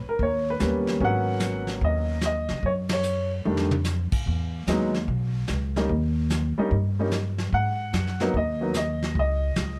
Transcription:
0.06 0.22 A#4 medium
0.06 muted upright bass stroke soft
0.19 0.57 D#2 medium
0.19 0.49 C#5 medium
0.19 brush sweep soft
0.19 kick soft
0.50 0.87 B4 medium
0.59 0.99 D#2 medium
0.59 1.01 G3 medium
0.59 0.99 A#3 medium
0.59 0.99 B3 medium
0.59 1.00 C#4 medium
0.59 snare medium
0.59 hi-hat pedal medium
0.87 snare soft
1.00 1.78 G#1 medium
1.00 2.15 F#3 medium
1.00 2.15 A#3 medium
1.00 2.15 B3 medium
1.00 2.15 C#4 medium
1.00 brush sweep soft
1.00 kick soft
1.04 1.67 F#5 loud
1.40 snare medium
1.40 hi-hat pedal medium
1.67 snare soft
1.81 2.46 D#2 medium
1.81 2.24 D#5 medium
1.81 brush sweep soft
1.81 kick soft
2.21 snare medium
2.21 hi-hat pedal medium
2.26 2.67 D#5 medium
2.49 2.62 C#3 medium
2.49 snare soft
2.63 3.41 F#2 medium
2.63 2.72 C#5 medium
2.63 brush sweep soft
2.63 kick soft
2.89 snare medium
2.89 ride medium
2.93 3.30 C#5 medium
3.03 hi-hat pedal medium
3.45 4.09 F2 medium
3.45 3.70 D#3 medium
3.45 3.70 G3 medium
3.45 3.70 A3 medium
3.45 3.71 D4 medium
3.57 snare medium
3.71 mid tom medium
3.84 snare medium
3.84 hi-hat pedal medium
4.12 muted upright bass stroke soft
4.12 kick medium
4.12 crash medium
4.26 4.65 E2 medium
4.26 brush sweep soft
4.26 kick soft
4.67 5.05 D#2 medium
4.67 4.92 F#3 medium
4.67 4.93 G#3 medium
4.67 4.93 B3 medium
4.67 4.93 D#4 medium
4.67 snare medium
4.67 hi-hat pedal medium
4.94 snare soft
5.08 5.46 B1 medium
5.08 brush sweep soft
5.08 kick soft
5.47 5.87 C#2 medium
5.47 snare medium
5.47 hi-hat pedal medium
5.76 5.89 G3 medium
5.76 5.89 A#3 medium
5.76 5.89 C#4 medium
5.76 5.89 D#4 medium
5.76 snare soft
5.89 6.53 D#2 medium
5.89 brush sweep medium
5.89 kick soft
6.30 snare medium
6.30 hi-hat pedal medium
6.58 6.70 G3 medium
6.58 6.71 A#3 medium
6.58 6.71 C#4 medium
6.58 6.71 D#4 medium
6.58 muted upright bass stroke soft
6.71 7.49 G2 medium
6.71 brush sweep soft
6.71 kick soft
6.99 7.11 G3 medium
6.99 7.11 A#3 medium
6.99 7.12 C#4 medium
6.99 7.12 D#4 medium
7.11 snare medium
7.11 hi-hat pedal soft
7.38 snare soft
7.53 7.91 G#2 medium
7.53 8.31 F#5 loud
7.53 brush sweep soft
7.53 kick soft
7.93 8.31 F#2 medium
7.93 snare medium
7.93 hi-hat pedal medium
8.07 snare soft
8.20 8.33 F#3 medium
8.20 8.33 A#3 medium
8.20 8.34 B3 medium
8.20 8.34 D#4 medium
8.20 snare soft
8.34 9.12 D#2 medium
8.34 8.76 D#5 medium
8.34 brush sweep soft
8.34 kick soft
8.61 8.74 F#3 medium
8.61 8.74 A#3 medium
8.61 8.74 B3 medium
8.61 8.74 D#4 medium
8.74 9.18 D#5 medium
8.74 snare medium
8.74 hi-hat pedal medium
9.02 snare soft
9.15 9.53 C#2 medium
9.15 brush sweep medium
9.15 kick soft
9.19 9.79 D#5 medium
9.56 9.79 C#2 medium
9.56 snare medium
9.56 hi-hat pedal medium

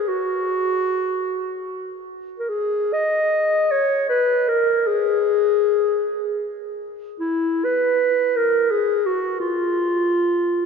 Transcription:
0.08 2.02 F#4 medium
2.39 2.51 A#4 medium
2.49 2.95 G#4 medium
2.93 3.73 D#5 medium
3.71 4.08 C#5 medium
4.09 4.50 B4 medium
4.48 4.89 A#4 medium
4.87 6.74 G#4 medium
7.20 7.66 E4 medium
7.64 8.38 B4 medium
8.36 8.72 A#4 medium
8.71 9.07 G#4 medium
9.06 9.39 F#4 medium
9.40 10.66 F4 medium

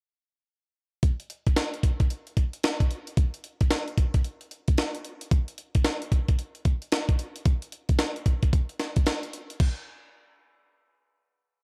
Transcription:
1.03 kick loud
1.03 closed hi-hat medium
1.20 closed hi-hat medium
1.30 closed hi-hat medium
1.47 kick medium
1.47 closed hi-hat soft
1.56 snare loud
1.56 closed hi-hat medium
1.74 closed hi-hat soft
1.83 kick medium
1.83 closed hi-hat medium
2.00 kick medium
2.00 closed hi-hat soft
2.10 closed hi-hat medium
2.27 closed hi-hat soft
2.37 kick medium
2.37 closed hi-hat medium
2.53 closed hi-hat medium
2.63 snare loud
2.63 closed hi-hat medium
2.80 kick medium
2.80 closed hi-hat soft
2.91 closed hi-hat medium
3.07 closed hi-hat medium
3.17 kick loud
3.17 closed hi-hat medium
3.34 closed hi-hat medium
3.44 closed hi-hat medium
3.61 kick medium
3.61 closed hi-hat soft
3.71 snare loud
3.71 closed hi-hat medium
3.88 closed hi-hat soft
3.98 kick medium
3.98 closed hi-hat medium
4.14 kick medium
4.14 closed hi-hat medium
4.24 closed hi-hat medium
4.41 closed hi-hat soft
4.51 closed hi-hat medium
4.68 kick medium
4.68 closed hi-hat soft
4.78 snare loud
4.78 closed hi-hat medium
4.95 closed hi-hat soft
5.05 closed hi-hat medium
5.21 closed hi-hat medium
5.31 kick loud
5.31 closed hi-hat medium
5.48 closed hi-hat medium
5.58 closed hi-hat medium
5.75 kick medium
5.75 closed hi-hat medium
5.85 snare loud
5.85 closed hi-hat medium
6.02 closed hi-hat soft
6.12 kick medium
6.12 closed hi-hat medium
6.28 kick medium
6.28 closed hi-hat medium
6.39 closed hi-hat medium
6.55 closed hi-hat soft
6.65 kick medium
6.65 closed hi-hat medium
6.82 closed hi-hat soft
6.92 snare loud
6.92 closed hi-hat medium
7.09 kick medium
7.09 closed hi-hat medium
7.19 closed hi-hat medium
7.36 closed hi-hat medium
7.45 kick loud
7.45 closed hi-hat medium
7.62 closed hi-hat medium
7.72 closed hi-hat medium
7.89 kick medium
7.89 closed hi-hat medium
7.99 snare loud
7.99 closed hi-hat medium
8.16 closed hi-hat soft
8.26 kick medium
8.26 closed hi-hat medium
8.43 kick medium
8.43 closed hi-hat medium
8.53 kick medium
8.53 closed hi-hat medium
8.69 closed hi-hat soft
8.79 snare medium
8.79 closed hi-hat medium
8.96 kick medium
8.96 closed hi-hat soft
9.06 snare loud
9.06 closed hi-hat medium
9.23 closed hi-hat soft
9.33 closed hi-hat medium
9.50 closed hi-hat medium
9.60 kick loud
9.60 crash medium

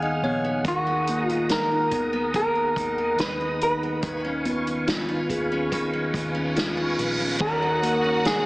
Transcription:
0.00 0.18 D#2 medium
0.00 0.61 D#3 medium
0.00 0.65 D#3 medium
0.00 0.24 B3 medium
0.00 0.44 B3 soft
0.00 1.08 D#4 medium
0.00 0.23 G#4 medium
0.00 3.98 G#4 soft
0.00 0.22 D#5 soft
0.00 0.66 F5 medium
0.00 0.67 F#5 soft
0.00 3.98 F#5 soft
0.00 0.61 G#5 soft
0.00 0.66 G#5 medium
0.00 0.61 F6 medium
0.22 0.62 A#1 medium
0.22 0.64 B3 medium
0.22 0.65 G#4 medium
0.22 0.62 C#5 medium
0.45 0.86 B3 medium
0.64 1.87 D#2 medium
0.64 2.33 D#3 medium
0.64 3.18 D#3 medium
0.64 1.26 F#4 medium
0.64 1.48 A#4 medium
0.64 3.99 A#5 soft
0.64 4.00 D#6 medium
0.64 kick loud
0.64 closed hi-hat medium
0.87 1.29 B3 medium
1.07 2.73 A#3 soft
1.07 1.70 D#4 medium
1.07 closed hi-hat medium
1.26 2.12 B3 medium
1.26 1.51 F4 medium
1.26 closed hi-hat soft
1.49 3.15 D#4 soft
1.49 1.91 A#4 medium
1.49 2.31 A#4 medium
1.49 snare loud
1.49 closed hi-hat medium
1.71 2.75 D#4 medium
1.91 2.72 D#2 medium
1.91 3.57 B3 soft
1.91 2.34 A#4 medium
1.91 kick medium
1.91 closed hi-hat medium
2.13 2.55 B3 medium
2.34 4.02 D#3 medium
2.34 3.19 A#4 medium
2.34 3.20 A#4 medium
2.34 kick medium
2.34 closed hi-hat medium
2.55 2.98 B3 soft
2.76 3.15 D#2 medium
2.76 3.40 D#4 medium
2.76 kick medium
2.76 closed hi-hat medium
2.98 3.83 B3 soft
3.18 3.99 D#2 medium
3.18 4.01 D#3 medium
3.18 3.62 B4 medium
3.18 snare medium
3.18 closed hi-hat medium
3.41 4.12 D#4 medium
3.61 6.96 B4 medium
3.61 closed hi-hat medium
3.83 4.24 B3 soft
4.01 5.26 D#2 medium
4.01 7.37 D#3 medium
4.01 5.72 D#3 medium
4.01 7.37 B4 medium
4.01 4.86 B4 medium
4.01 7.36 F5 medium
4.01 7.36 G#5 soft
4.01 7.37 C#6 medium
4.01 kick medium
4.01 closed hi-hat medium
4.25 4.67 C#4 soft
4.45 6.10 B3 soft
4.45 5.07 F4 medium
4.45 closed hi-hat medium
4.67 5.51 C#4 medium
4.67 closed hi-hat soft
4.87 6.52 F4 medium
4.87 5.29 B4 medium
4.87 snare loud
4.87 closed hi-hat medium
5.09 6.13 F4 medium
5.29 6.10 D#2 medium
5.29 6.95 G#4 medium
5.29 5.71 B4 medium
5.29 kick medium
5.29 closed hi-hat medium
5.52 5.93 C#4 medium
5.71 7.40 D#3 medium
5.71 6.55 B4 soft
5.71 kick medium
5.71 closed hi-hat medium
5.71 reverse cymbal medium
5.93 6.34 C#4 medium
6.14 6.94 D#2 medium
6.14 6.76 F4 medium
6.14 kick medium
6.14 closed hi-hat medium
6.35 7.20 C#4 soft
6.56 7.38 F4 medium
6.56 6.98 B4 medium
6.56 snare loud
6.56 closed hi-hat medium
6.77 7.49 F4 medium
6.98 7.37 A#1 medium
6.98 7.49 B4 medium
6.98 closed hi-hat medium
7.20 7.65 C#4 medium
7.39 8.46 D#2 medium
7.39 8.23 D#3 medium
7.39 8.46 F#4 medium
7.39 8.26 A#4 medium
7.39 8.46 C#5 medium
7.39 8.46 F#5 medium
7.39 8.46 A#5 soft
7.39 8.46 D#6 medium
7.39 kick loud
7.39 crash medium
7.62 8.25 D#4 medium
7.83 8.46 A#3 soft
7.83 8.46 A#4 medium
7.83 closed hi-hat medium
8.04 8.44 C#4 medium
8.24 8.46 D#3 medium
8.24 8.46 G#4 medium
8.24 snare loud
8.24 closed hi-hat medium

